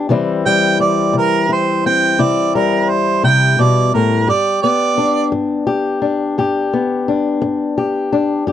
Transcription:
0, 0, Header, 1, 3, 480
1, 0, Start_track
1, 0, Key_signature, 1, "major"
1, 0, Tempo, 697674
1, 73, Time_signature, 12, 3, 24, 8
1, 5864, End_track
2, 0, Start_track
2, 0, Title_t, "Harmonica"
2, 0, Program_c, 0, 22
2, 318, Note_on_c, 0, 79, 106
2, 549, Note_off_c, 0, 79, 0
2, 554, Note_on_c, 0, 74, 76
2, 787, Note_off_c, 0, 74, 0
2, 810, Note_on_c, 0, 70, 88
2, 1035, Note_off_c, 0, 70, 0
2, 1048, Note_on_c, 0, 72, 78
2, 1274, Note_off_c, 0, 72, 0
2, 1281, Note_on_c, 0, 79, 89
2, 1525, Note_on_c, 0, 74, 86
2, 1535, Note_off_c, 0, 79, 0
2, 1750, Note_off_c, 0, 74, 0
2, 1754, Note_on_c, 0, 70, 78
2, 1988, Note_on_c, 0, 72, 82
2, 1999, Note_off_c, 0, 70, 0
2, 2224, Note_off_c, 0, 72, 0
2, 2232, Note_on_c, 0, 79, 108
2, 2484, Note_on_c, 0, 74, 88
2, 2494, Note_off_c, 0, 79, 0
2, 2709, Note_off_c, 0, 74, 0
2, 2713, Note_on_c, 0, 70, 76
2, 2946, Note_off_c, 0, 70, 0
2, 2954, Note_on_c, 0, 74, 93
2, 3178, Note_off_c, 0, 74, 0
2, 3182, Note_on_c, 0, 74, 95
2, 3653, Note_off_c, 0, 74, 0
2, 5864, End_track
3, 0, Start_track
3, 0, Title_t, "Steel-string acoustic guitar"
3, 0, Program_c, 1, 25
3, 0, Note_on_c, 1, 67, 64
3, 62, Note_on_c, 1, 48, 77
3, 69, Note_on_c, 1, 52, 61
3, 73, Note_on_c, 1, 55, 62
3, 78, Note_off_c, 1, 67, 0
3, 78, Note_on_c, 1, 60, 65
3, 80, Note_on_c, 1, 64, 69
3, 315, Note_off_c, 1, 55, 0
3, 318, Note_on_c, 1, 55, 58
3, 500, Note_off_c, 1, 48, 0
3, 540, Note_off_c, 1, 60, 0
3, 548, Note_on_c, 1, 60, 57
3, 781, Note_on_c, 1, 48, 70
3, 1017, Note_off_c, 1, 64, 0
3, 1025, Note_on_c, 1, 64, 60
3, 1219, Note_off_c, 1, 48, 0
3, 1271, Note_off_c, 1, 60, 0
3, 1280, Note_on_c, 1, 60, 56
3, 1500, Note_off_c, 1, 64, 0
3, 1506, Note_on_c, 1, 48, 73
3, 1509, Note_on_c, 1, 64, 67
3, 1753, Note_off_c, 1, 55, 0
3, 1756, Note_on_c, 1, 55, 59
3, 1942, Note_off_c, 1, 48, 0
3, 1997, Note_off_c, 1, 60, 0
3, 2225, Note_on_c, 1, 48, 69
3, 2465, Note_off_c, 1, 48, 0
3, 2468, Note_on_c, 1, 47, 67
3, 2711, Note_off_c, 1, 47, 0
3, 2717, Note_on_c, 1, 45, 61
3, 2923, Note_off_c, 1, 52, 0
3, 2945, Note_off_c, 1, 64, 0
3, 2946, Note_on_c, 1, 43, 70
3, 2947, Note_on_c, 1, 67, 69
3, 2955, Note_off_c, 1, 45, 0
3, 3187, Note_off_c, 1, 55, 0
3, 3190, Note_on_c, 1, 59, 63
3, 3382, Note_off_c, 1, 43, 0
3, 3424, Note_on_c, 1, 62, 65
3, 3659, Note_on_c, 1, 43, 73
3, 3896, Note_off_c, 1, 67, 0
3, 3899, Note_on_c, 1, 67, 70
3, 4098, Note_off_c, 1, 43, 0
3, 4137, Note_off_c, 1, 62, 0
3, 4140, Note_on_c, 1, 62, 57
3, 4389, Note_on_c, 1, 43, 73
3, 4391, Note_off_c, 1, 67, 0
3, 4394, Note_on_c, 1, 67, 68
3, 4625, Note_off_c, 1, 59, 0
3, 4634, Note_on_c, 1, 59, 60
3, 4822, Note_off_c, 1, 43, 0
3, 4864, Note_off_c, 1, 62, 0
3, 4872, Note_on_c, 1, 62, 61
3, 5102, Note_on_c, 1, 43, 80
3, 5347, Note_off_c, 1, 67, 0
3, 5350, Note_on_c, 1, 67, 64
3, 5539, Note_off_c, 1, 43, 0
3, 5582, Note_off_c, 1, 62, 0
3, 5590, Note_on_c, 1, 62, 59
3, 5802, Note_off_c, 1, 62, 0
3, 5803, Note_off_c, 1, 59, 0
3, 5827, Note_on_c, 1, 43, 78
3, 5831, Note_off_c, 1, 67, 0
3, 5834, Note_on_c, 1, 67, 67
3, 5864, Note_off_c, 1, 43, 0
3, 5864, Note_off_c, 1, 67, 0
3, 5864, End_track
0, 0, End_of_file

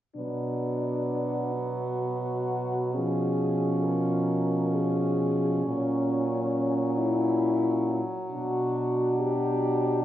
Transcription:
0, 0, Header, 1, 5, 480
1, 0, Start_track
1, 0, Key_signature, 2, "minor"
1, 0, Tempo, 928793
1, 88, Time_signature, 3, 2, 24, 8
1, 1526, Tempo, 900901
1, 2966, Tempo, 890208
1, 4406, Tempo, 859599
1, 5368, End_track
2, 0, Start_track
2, 0, Title_t, "French horn"
2, 0, Program_c, 0, 60
2, 81, Note_on_c, 0, 62, 44
2, 786, Note_off_c, 0, 62, 0
2, 804, Note_on_c, 0, 66, 46
2, 1509, Note_off_c, 0, 66, 0
2, 1521, Note_on_c, 0, 68, 50
2, 1998, Note_on_c, 0, 70, 48
2, 2006, Note_off_c, 0, 68, 0
2, 2482, Note_on_c, 0, 68, 54
2, 2490, Note_off_c, 0, 70, 0
2, 2964, Note_off_c, 0, 68, 0
2, 2967, Note_on_c, 0, 61, 48
2, 3683, Note_on_c, 0, 64, 54
2, 3691, Note_off_c, 0, 61, 0
2, 4258, Note_off_c, 0, 64, 0
2, 4407, Note_on_c, 0, 66, 57
2, 4869, Note_off_c, 0, 66, 0
2, 4888, Note_on_c, 0, 67, 55
2, 5365, Note_off_c, 0, 67, 0
2, 5368, End_track
3, 0, Start_track
3, 0, Title_t, "French horn"
3, 0, Program_c, 1, 60
3, 82, Note_on_c, 1, 59, 39
3, 1520, Note_on_c, 1, 61, 38
3, 1527, Note_off_c, 1, 59, 0
3, 4254, Note_off_c, 1, 61, 0
3, 4394, Note_on_c, 1, 62, 42
3, 5368, Note_off_c, 1, 62, 0
3, 5368, End_track
4, 0, Start_track
4, 0, Title_t, "French horn"
4, 0, Program_c, 2, 60
4, 90, Note_on_c, 2, 54, 32
4, 1533, Note_on_c, 2, 53, 30
4, 1541, Note_off_c, 2, 54, 0
4, 2962, Note_off_c, 2, 53, 0
4, 2965, Note_on_c, 2, 54, 32
4, 5368, Note_off_c, 2, 54, 0
4, 5368, End_track
5, 0, Start_track
5, 0, Title_t, "French horn"
5, 0, Program_c, 3, 60
5, 89, Note_on_c, 3, 47, 36
5, 2946, Note_off_c, 3, 47, 0
5, 2967, Note_on_c, 3, 46, 39
5, 4237, Note_off_c, 3, 46, 0
5, 4405, Note_on_c, 3, 47, 44
5, 5368, Note_off_c, 3, 47, 0
5, 5368, End_track
0, 0, End_of_file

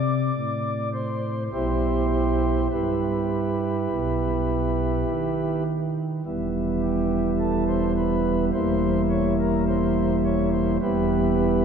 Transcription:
0, 0, Header, 1, 2, 480
1, 0, Start_track
1, 0, Key_signature, 1, "minor"
1, 0, Tempo, 1178782
1, 620, Time_signature, 4, 2, 24, 8
1, 2545, Tempo, 1140684
1, 4817, End_track
2, 0, Start_track
2, 0, Title_t, "Pipe organ"
2, 0, Program_c, 0, 19
2, 0, Note_on_c, 0, 48, 90
2, 0, Note_on_c, 0, 74, 123
2, 129, Note_off_c, 0, 48, 0
2, 143, Note_on_c, 0, 45, 82
2, 363, Note_off_c, 0, 74, 0
2, 382, Note_on_c, 0, 72, 93
2, 585, Note_off_c, 0, 72, 0
2, 606, Note_off_c, 0, 45, 0
2, 621, Note_on_c, 0, 35, 76
2, 621, Note_on_c, 0, 47, 70
2, 622, Note_on_c, 0, 64, 82
2, 622, Note_on_c, 0, 67, 77
2, 622, Note_on_c, 0, 72, 106
2, 1089, Note_off_c, 0, 35, 0
2, 1089, Note_off_c, 0, 47, 0
2, 1089, Note_off_c, 0, 67, 0
2, 1090, Note_off_c, 0, 64, 0
2, 1090, Note_off_c, 0, 72, 0
2, 1107, Note_on_c, 0, 43, 63
2, 1107, Note_on_c, 0, 64, 49
2, 1107, Note_on_c, 0, 71, 68
2, 1109, Note_on_c, 0, 67, 54
2, 1575, Note_off_c, 0, 43, 0
2, 1589, Note_on_c, 0, 35, 69
2, 1589, Note_on_c, 0, 47, 70
2, 2053, Note_off_c, 0, 35, 0
2, 2053, Note_off_c, 0, 47, 0
2, 2068, Note_on_c, 0, 51, 62
2, 2293, Note_off_c, 0, 64, 0
2, 2293, Note_off_c, 0, 71, 0
2, 2294, Note_off_c, 0, 67, 0
2, 2532, Note_off_c, 0, 51, 0
2, 2546, Note_on_c, 0, 55, 52
2, 2547, Note_on_c, 0, 28, 59
2, 2547, Note_on_c, 0, 59, 49
2, 2548, Note_on_c, 0, 40, 60
2, 2548, Note_on_c, 0, 64, 52
2, 2786, Note_on_c, 0, 67, 93
2, 2991, Note_off_c, 0, 67, 0
2, 3026, Note_on_c, 0, 69, 81
2, 3129, Note_off_c, 0, 69, 0
2, 3146, Note_on_c, 0, 72, 99
2, 3250, Note_off_c, 0, 72, 0
2, 3265, Note_on_c, 0, 71, 93
2, 3470, Note_off_c, 0, 71, 0
2, 3492, Note_off_c, 0, 28, 0
2, 3492, Note_off_c, 0, 55, 0
2, 3492, Note_off_c, 0, 59, 0
2, 3493, Note_off_c, 0, 40, 0
2, 3493, Note_off_c, 0, 64, 0
2, 3504, Note_on_c, 0, 64, 53
2, 3505, Note_on_c, 0, 28, 59
2, 3505, Note_on_c, 0, 40, 59
2, 3505, Note_on_c, 0, 55, 52
2, 3505, Note_on_c, 0, 58, 52
2, 3505, Note_on_c, 0, 72, 106
2, 3709, Note_off_c, 0, 72, 0
2, 3743, Note_on_c, 0, 73, 93
2, 3846, Note_off_c, 0, 73, 0
2, 3871, Note_on_c, 0, 70, 90
2, 3971, Note_off_c, 0, 70, 0
2, 3989, Note_on_c, 0, 72, 94
2, 4193, Note_off_c, 0, 72, 0
2, 4228, Note_on_c, 0, 73, 92
2, 4330, Note_off_c, 0, 73, 0
2, 4344, Note_on_c, 0, 72, 90
2, 4448, Note_off_c, 0, 64, 0
2, 4448, Note_off_c, 0, 72, 0
2, 4449, Note_off_c, 0, 28, 0
2, 4449, Note_off_c, 0, 40, 0
2, 4449, Note_off_c, 0, 55, 0
2, 4449, Note_off_c, 0, 58, 0
2, 4467, Note_on_c, 0, 40, 58
2, 4467, Note_on_c, 0, 71, 105
2, 4468, Note_on_c, 0, 55, 46
2, 4468, Note_on_c, 0, 64, 69
2, 4469, Note_on_c, 0, 28, 62
2, 4469, Note_on_c, 0, 67, 79
2, 4470, Note_on_c, 0, 59, 49
2, 4817, Note_off_c, 0, 28, 0
2, 4817, Note_off_c, 0, 40, 0
2, 4817, Note_off_c, 0, 55, 0
2, 4817, Note_off_c, 0, 59, 0
2, 4817, Note_off_c, 0, 64, 0
2, 4817, Note_off_c, 0, 67, 0
2, 4817, Note_off_c, 0, 71, 0
2, 4817, End_track
0, 0, End_of_file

